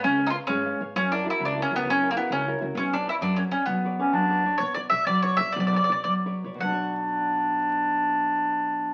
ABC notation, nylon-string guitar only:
X:1
M:6/8
L:1/8
Q:3/8=130
K:Bm
V:1 name="Nylon-string guitar"
[^G,Bc^e] [Bce] [Bce] G, [Bce] [Bce] | F, [EF^A] [EFA] C, [EFA] [EFA] | C, [EF^A] [EFA] C, [EFA] [EFA] | B, [Bcd] [Bcd] F, [Bcd] [Bcd] |
F, [Bcd] [Bcd] F, [Bcd] [Bcd] | B, [Bcd] [Bcd] F, [Bcd] [Bcd] | F, [Bcd] [Bcd] F, [Bcd] [Bcd] | [B,,F,B,DFc]6- |
[B,,F,B,DFc]6 |]